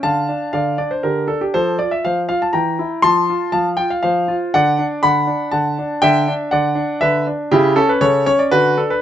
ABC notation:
X:1
M:3/4
L:1/16
Q:1/4=120
K:F
V:1 name="Grand piano"
[fa]4 [df]2 d c [GB]2 A G | [Ac]2 d e [cf]2 f a [gb]4 | [ac']4 [fa]2 g f [cf]4 | [K:D] [df]4 [fb]4 [fa]4 |
[eg]4 [df]4 [Be]2 z2 | [EG]2 A B [Ac]2 c d [FB]2 A B |]
V:2 name="Grand piano"
D,2 D2 D,2 D2 D,2 D2 | F,2 F2 F,2 F2 E,2 E2 | F,2 F2 F,2 F2 F,2 F2 | [K:D] D,2 D2 D,2 D2 D,2 D2 |
D,2 D2 D,2 D2 D,2 D2 | C,2 C2 C,2 C2 D,2 D2 |]